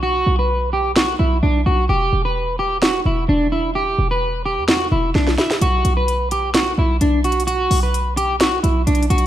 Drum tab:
HH |------------------------------------------------|------------------------------------------------|------------------------------------------------|x-----x-----x-----x-----x-----------x-----x-x-x-|
SD |------------------------o-----------------------|------------------------o-----------------------|------------------------o-----------o--o--o--o--|------------------------o-----------------------|

HH |x-----o-----x-----x-----x-----x-----x-x-x-x-x---|
SD |------------------------o-----------------------|